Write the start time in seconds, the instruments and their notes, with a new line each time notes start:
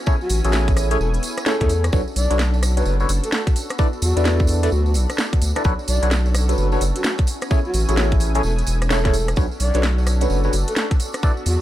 Already playing: analog synth pad B3 C#4 E4 G#5
0.06 tine electric piano C#4 E4 G#4 A4 C#5, kick, tambourine
0.21 soft synth lead F#4, tambourine
0.29 sub bass A1, open hi-hat, tambourine
0.45 sub bass A1, tine electric piano C#4 E4 G#4 A4 C#5, soft synth lead F#4, closed hi-hat, tambourine
0.52 snare, tambourine
0.68 kick, closed hi-hat, tambourine
0.77 cross-stick, open hi-hat, tambourine
0.91 tine electric piano C#4 E4 G#4 A4 C#5, soft synth lead A4, closed hi-hat, tambourine
1.00 sub bass E1, soft synth lead A4, tambourine
1.14 closed hi-hat, tambourine
1.23 open hi-hat, tambourine
1.38 cross-stick, closed hi-hat, tambourine
1.46 tine electric piano C#4 E4 G#4 A4 C#5, soft synth lead A4, snare, tambourine
1.60 sub bass E2, tine electric piano C#4 E4 G#4 A4 C#5, kick, closed hi-hat, tambourine
1.69 open hi-hat, tambourine
1.84 cross-stick, closed hi-hat, tambourine
1.92 sub bass B1, tine electric piano D4 F#4 A4 B4 C#5, analog synth pad D4 F#4 A4, kick, tambourine
2.08 tambourine
2.16 sub bass B1, soft synth lead D5, open hi-hat, tambourine
2.30 sub bass B1, tine electric piano D4 F#4 A4 B4 C#5, closed hi-hat, tambourine
2.39 snare, tambourine
2.54 tambourine
2.63 cross-stick, open hi-hat, tambourine
2.77 tine electric piano D4 F#4 A4 B4 C#5, soft synth lead B4, closed hi-hat, tambourine
2.85 sub bass F#1, soft synth lead B4, tambourine
3.00 tine electric piano D4 F#4 A4 B4 C#5, soft synth lead B4, tambourine
3.09 sub bass F#1, open hi-hat, tambourine
3.24 soft synth lead A4, closed hi-hat, tambourine
3.32 soft synth lead A4, snare, tambourine
3.47 kick, closed hi-hat, tambourine
3.56 analog synth pad B3 D4, open hi-hat, tambourine
3.70 cross-stick, closed hi-hat, tambourine
3.78 tine electric piano D4 E4 A4 B4 D5, kick, tambourine
3.93 tambourine
4.02 sub bass E2, soft synth lead F#4, open hi-hat, tambourine
4.17 sub bass E2, tine electric piano D4 E4 A4 B4 D5, closed hi-hat, tambourine
4.25 snare, tambourine
4.39 kick, tambourine
4.47 open hi-hat, tambourine
4.63 tine electric piano D4 E4 A4 B4 D5, soft synth lead A4, closed hi-hat, tambourine
4.72 sub bass D2, soft synth lead F#4, tambourine
4.86 soft synth lead F#4, tambourine
4.94 sub bass B1, open hi-hat, tambourine
5.10 cross-stick, closed hi-hat, tambourine
5.18 snare, tambourine
5.33 kick, closed hi-hat, tambourine
5.42 sub bass D2, open hi-hat, tambourine
5.55 tine electric piano D4 E4 A4 B4 D5, cross-stick, closed hi-hat, tambourine
5.64 sub bass B1, analog synth pad C#4 A4, tine electric piano D4 F#4 A4 B4 C#5, kick, tambourine
5.79 tambourine
5.88 sub bass B1, soft synth lead D5, open hi-hat, tambourine
6.03 sub bass B1, tine electric piano D4 F#4 A4 B4 C#5, closed hi-hat, tambourine
6.11 snare, tambourine
6.26 tambourine
6.34 cross-stick, open hi-hat, tambourine
6.49 tine electric piano D4 F#4 A4 B4 C#5, soft synth lead B4, closed hi-hat, tambourine
6.58 sub bass F#1, soft synth lead B4, tambourine
6.72 tine electric piano D4 F#4 A4 B4 C#5, soft synth lead B4, tambourine
6.81 sub bass F#1, open hi-hat, tambourine
6.95 soft synth lead F#4, closed hi-hat, tambourine
7.04 soft synth lead F#4, snare, tambourine
7.18 kick, closed hi-hat, tambourine
7.27 analog synth pad B3 E4 G#5, open hi-hat, tambourine
7.41 cross-stick, closed hi-hat, tambourine
7.50 tine electric piano C#4 E4 G#4 A4 C#5, kick, tambourine
7.65 soft synth lead F#4, tambourine
7.74 sub bass A1, open hi-hat, tambourine
7.89 sub bass A1, tine electric piano C#4 E4 G#4 A4 C#5, soft synth lead F#4, closed hi-hat, tambourine
7.97 snare, tambourine
8.11 kick, closed hi-hat, tambourine
8.20 open hi-hat, tambourine
8.35 tine electric piano C#4 E4 G#4 A4 C#5, soft synth lead A4, closed hi-hat, tambourine
8.43 sub bass E1, soft synth lead A4, tambourine
8.58 closed hi-hat, tambourine
8.67 sub bass E1, open hi-hat, tambourine
8.82 cross-stick, closed hi-hat, tambourine
8.90 tine electric piano C#4 E4 G#4 A4 C#5, soft synth lead A4, snare, tambourine
9.05 tine electric piano C#4 E4 G#4 A4 C#5, kick, snare, closed hi-hat, tambourine
9.13 open hi-hat, tambourine
9.28 cross-stick, closed hi-hat, tambourine
9.36 sub bass B1, analog synth pad C#4 D4 F#4 A4, tine electric piano D4 F#4 A4 B4 C#5, kick, tambourine
9.51 tambourine
9.60 sub bass B1, soft synth lead D5, open hi-hat, tambourine
9.74 sub bass B1, tine electric piano D4 F#4 A4 B4 C#5, closed hi-hat, tambourine
9.83 snare, tambourine
9.98 tambourine
10.06 cross-stick, open hi-hat, tambourine
10.21 tine electric piano D4 F#4 A4 B4 C#5, soft synth lead B4, closed hi-hat, tambourine
10.30 sub bass F#1, soft synth lead B4, tambourine
10.44 tine electric piano D4 F#4 A4 B4 C#5, soft synth lead B4, tambourine
10.53 sub bass F#1, open hi-hat, tambourine
10.67 soft synth lead A4, closed hi-hat, tambourine
10.76 soft synth lead A4, snare, tambourine
10.91 kick, closed hi-hat, tambourine
11.00 analog synth pad B3, open hi-hat, tambourine
11.13 cross-stick, closed hi-hat, tambourine
11.23 tine electric piano D4 E4 A4 B4 D5, kick, tambourine
11.37 tambourine
11.46 sub bass E2, soft synth lead F#4, open hi-hat, tambourine